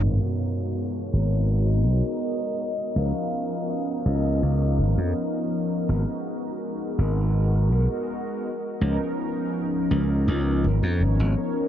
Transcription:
<<
  \new Staff \with { instrumentName = "Soft synth lead" } { \time 4/4 \key gis \dorian \tempo 4 = 82 r4 cis''4 dis''2 | eis''4 dis''2~ dis''8 r8 | r1 | r2. r8 ais'8 | }
  \new Staff \with { instrumentName = "Analog polysynth" } { \time 4/4 \key gis \dorian <gis b dis' fis' ais'>2~ <gis b dis' fis' ais'>8. <gis b dis' fis' ais'>8. r8 | <eis b cis' dis' ais'>2~ <eis b cis' dis' ais'>8. <eis b cis' dis' ais'>4~ <eis b cis' dis' ais'>16 | <gis b dis' fis' ais'>2~ <gis b dis' fis' ais'>8. <gis b dis' fis' ais'>8. r8 | <eis b cis' dis' ais'>2~ <eis b cis' dis' ais'>8. r16 <eis b cis' dis' cis''>8 r8 | }
  \new Staff \with { instrumentName = "Slap bass" } { \clef bass \time 4/4 \key gis \dorian gis,,16 r4 r16 gis,,4 b,,16 r4 r16 | cis,16 r4 r16 cis,8 cis,8 gis,,16 eis,16 r4 | gis,,16 r4 r16 gis,,4 b,,16 r4 r16 | cis,16 r4 r16 cis,8 cis,8 gis,,16 eis,16 gis,,16 gis,,16 r8 | }
  \new DrumStaff \with { instrumentName = "Drums" } \drummode { \time 4/4 cymc4 r4 r4 r4 | r4 r4 r4 r4 | r4 r4 r4 r4 | r4 r4 r4 r4 | }
>>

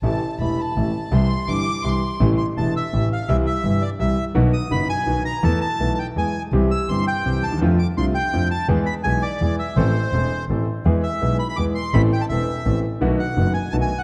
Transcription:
<<
  \new Staff \with { instrumentName = "Violin section" } { \time 3/4 \key a \minor \tempo 4 = 166 a''4 b''8 a''4. | c'''4 d'''4 c'''4 | r2. | r2. |
r2. | r2. | r2. | r2. |
r2. | r2. | r2. | r2. |
r2. | }
  \new Staff \with { instrumentName = "Bandoneon" } { \time 3/4 \key a \minor r2. | r2. | r8 c'''8 a''8 e''4 f''8 | e''8 e''4 d''8 e''8. r16 |
r8 dis'''8 b''8 gis''4 bes''8 | a''8 a''8.~ a''32 a''32 g''8 gis''8. r16 | r8 e'''8 c'''8 g''4 a''8 | r8 d'''8 c'''8 g''4 a''8 |
r8 b''8 gis''8 d''4 e''8 | c''2 r4 | r8 e''4 b''16 b''16 d'''8 c'''8 | b''8 g''16 a''16 e''4. r8 |
r8 fis''4 gis''8 a''16 gis''8 fis''16 | }
  \new Staff \with { instrumentName = "Grand piano" } { \clef bass \time 3/4 \key a \minor <a,, a, c e a e'>8 r8 <e,, e, c e a e'>8 r8 <a,, a, c e a e'>8 r8 | <c, c e g e'>8 r8 <g,, g, c e g e'>8 r8 <c, c e g e'>8 r8 | <a,, a, c e a e'>8 r8 <e,, e, c e a e'>8 r8 <a,, a, c e a e'>8 r8 | <c, c e g e'>8 r8 <g,, g, c e g e'>8 r8 <c, c e g e'>8 r8 |
<b,, b, dis fis b fis'>8 r8 <fis,, fis, dis fis b fis'>8 r8 <b,, b, dis fis b fis'>8 r8 | <e, e a b a'>8 r8 <b,, b, e a b a'>8 r8 <e, e gis b gis'>8 r8 | <c, c e g c' g'>8 r8 <g,, g, e g c' g'>8 r8 <c, c e g c' g'>8 r32 d,32 dis,32 e,32 | <f, d f a c' f'>8 r8 <c, c d a c' f'>8 r8 <f, d f a c' f'>8 r8 |
<e, e gis b gis'>8 r8 <b,, b, e gis b gis'>8 r8 <e, e gis b gis'>8 r8 | <a,, a, e a c' a'>8 r8 <e,, e, e a c' a'>8 r8 <a,, a, e a c' a'>8 r8 | <e, e gis b gis'>8 r8 <b,, b, e gis b gis'>8 r8 <e, e gis b gis'>8 r8 | <a,, a, e b c' a'>8 r8 <e,, e, e b c' a'>8 r8 <a,, a, e b c' a'>8 r8 |
<b,, b, dis a b fis'>8 r8 <fis,, fis, dis a b fis'>8 r8 <b,, b, dis a b fis'>8 r8 | }
  \new Staff \with { instrumentName = "Double bass" } { \clef bass \time 3/4 \key a \minor a,,8 r8 e,,8 r8 a,,8 r8 | c,8 r8 g,,8 r8 c,8 r8 | a,,8 r8 e,,8 r8 a,,8 r8 | c,8 r8 g,,8 r8 c,8 r8 |
b,,8 r8 fis,,8 r8 b,,8 r8 | e,8 r8 b,,8 r8 e,8 r8 | c,8 r8 g,,8 r8 c,8 dis,8 | f,8 r8 c,8 r8 f,8 r8 |
e,8 r8 b,,8 r8 e,8 r8 | a,,8 r8 e,,8 r8 a,,8 r8 | e,8 r8 b,,8 r8 e,8 r8 | a,,8 r8 e,,8 r8 a,,8 r8 |
b,,8 r8 fis,,8 r8 b,,8 r8 | }
>>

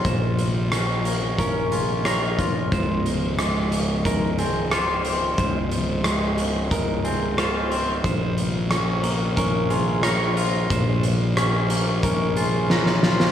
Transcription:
<<
  \new Staff \with { instrumentName = "Clean electric guitar" } { \time 4/4 \key bes \minor \tempo 4 = 90 c''4 r4 bes'8 aes'8 des''4 | c''4 r4 bes'8 aes'8 c''4 | c''4 r4 bes'8 aes'8 c''4 | c''4 r4 bes'8 aes'8 des''4 |
c''4 r4 bes'8 aes'8 des''4 | }
  \new Staff \with { instrumentName = "Clean electric guitar" } { \time 4/4 \key bes \minor <bes, des' f' bes'>4 des'8 bes8 des'8 f'8 bes'8 f'8 | des,4 aes8 des8 aes8 c'8 f'8 c'8 | des,4 aes8 des8 aes8 c'8 f'8 c'8 | bes,4 des'8 bes8 des'8 f'8 bes'8 f'8 |
bes,4 des'8 bes8 des'8 f'8 bes'8 f'8 | }
  \new Staff \with { instrumentName = "Fingered electric bass" } { \clef bass \time 4/4 \key bes \minor bes,,1 | des,,1 | des,,1 | bes,,1 |
bes,,1 | }
  \new DrumStaff \with { instrumentName = "Drums" } \drummode { \time 4/4 <hh bd>8 hh8 <hh ss>8 hh8 <hh bd>8 hh8 <hh ss>8 <hh bd>8 | <hh bd>8 hh8 <hh ss>8 hh8 <hh bd>8 hh8 <hh ss>8 hh8 | <hh bd>8 hh8 <hh ss>8 hh8 <hh bd>8 hh8 <hh ss>8 hh8 | <hh bd>8 hh8 <hh ss>8 hh8 <hh bd>8 hh8 <hh ss>8 hh8 |
<hh bd>8 hh8 <hh ss>8 hh8 <hh bd>8 hh8 sn16 sn16 sn16 sn16 | }
>>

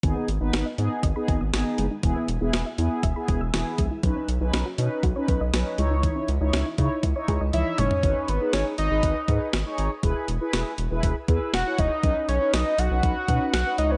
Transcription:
<<
  \new Staff \with { instrumentName = "Analog synth lead" } { \time 4/4 \key gis \minor \tempo 4 = 120 r1 | r1 | r1 | r2. e''8 cis''8~ |
cis''8 b'8 cis''8 dis''4. r4 | r2. fis''8 dis''8~ | dis''8 cis''8 dis''8 fis''4. fis''8 dis''16 b'16 | }
  \new Staff \with { instrumentName = "Analog polysynth" } { \time 4/4 \key gis \minor <b dis' gis'>8 r16 <b dis' b'>8 r16 <b dis' gis'>8 r16 <b dis' gis'>8 r16 <b dis' gis'>8. r16 | <b e' gis'>8 r16 <b e' gis'>8 r16 <b e' gis'>8 r16 <b e' gis'>8 r16 <b e' gis'>8. r16 | <cis' dis' b'>8 r16 <cis' dis' b'>8 r16 <cis' dis' b'>8 r16 <cis' dis' b'>8 r16 <cis' dis' b'>8 <dis' e' cis''>8~ | <dis' e' cis''>8 r16 <dis' e' cis''>8 r16 <dis' e' cis''>8 r16 <dis' e' cis''>8 r16 <dis' e' cis''>8. r16 |
<dis' gis' b'>8 r16 <dis' gis' b'>8. r16 <dis' gis' b'>8 r16 <dis' gis' b'>8 r16 <dis' gis' cis''>8 r16 | <e' gis' b'>8 r16 <e' gis' b'>8. r16 <e' gis' b'>8 r16 <e' gis' b'>8 r16 <e' gis' cis''>8 r16 | <cis' dis' b'>8 r16 <cis' dis' b'>8. r16 <cis' dis' b'>8 r16 <cis' dis' b'>8 r16 <cis' dis' b'>16 <dis' e' cis''>8 | }
  \new Staff \with { instrumentName = "Synth arpeggio sound" } { \time 4/4 \key gis \minor dis16 b16 r16 dis'16 b16 dis''16 dis'16 r16 dis''16 b''16 gis''16 dis'''16 dis16 r16 gis16 dis'16 | e16 b16 r16 e'16 b16 e''16 e'16 r16 e''16 b''16 gis''16 e'''16 e16 r16 gis16 e'16 | fis16 cis'16 r16 dis'16 cis'16 fis'16 dis'16 r16 fis'16 cis''16 b'16 dis''16 fis16 r16 gis16 dis'16 | e16 cis'16 r16 dis'16 cis'16 e'16 dis'16 r16 e'16 cis''16 gis'16 dis''16 e16 r16 gis16 dis'16 |
r1 | r1 | r1 | }
  \new Staff \with { instrumentName = "Analog synth bass" } { \clef bass \time 4/4 \key gis \minor gis,,16 r16 gis,,16 gis,,16 gis,,16 r16 gis,16 r16 gis,,16 r16 gis,,16 gis,,16 gis,,16 r16 fis,,16 r16 | e,,16 r16 e,,16 e,,16 e,,16 r16 e,16 r16 e,,16 r16 e,,16 e,,16 e,,16 r16 ais,,16 r16 | b,,16 r16 b,,16 b,,16 b,,16 r16 b,16 r16 b,,16 r16 b,,16 b,,16 b,,16 r16 cis,8~ | cis,16 r16 cis,16 cis,16 cis,16 r16 cis16 r16 cis,16 r16 cis,16 cis,16 cis,16 r16 fis,,16 r16 |
gis,,16 r16 gis,,16 r16 gis,,16 r16 gis,,16 gis,,16 gis,,16 r16 gis,16 r16 gis,,16 r16 gis,,16 r16 | e,,16 r16 e,,16 r16 e,,16 r16 e,,16 e,,16 e,,16 r16 e,16 r16 e,,16 r16 e,,16 r16 | b,,16 r16 b,,16 r16 b,,16 r16 b,,16 b,,16 b,,16 r16 b,16 r16 b,,16 r16 cis,8 | }
  \new DrumStaff \with { instrumentName = "Drums" } \drummode { \time 4/4 <hh bd>8 hh8 <hh sn>8 hh8 <hh bd>8 <hh bd>8 <hh sn>8 hh8 | <hh bd>8 hh8 <hh sn>8 hh8 <hh bd>8 <hh bd>8 <hh sn>8 <hh bd>8 | <hh bd>8 hh8 <hh sn>8 hh8 <hh bd>8 <hh bd>8 <hh sn>8 hh8 | <hh bd>8 hh8 <hh sn>8 <hh bd>8 <hh bd>8 <hh bd>8 <hh tommh>8 <hh toml>16 tomfh16 |
<hh bd>8 hh8 <hh sn>8 hh8 <hh bd>8 <hh bd>8 <hh sn>8 hh8 | <hh bd>8 hh8 <hh sn>8 hh8 <hh bd>8 <hh bd>8 <hh sn>8 <hh bd>8 | <hh bd>8 hh8 <hh sn>8 hh8 <hh bd>8 <hh bd>8 <hh sn>8 hh8 | }
>>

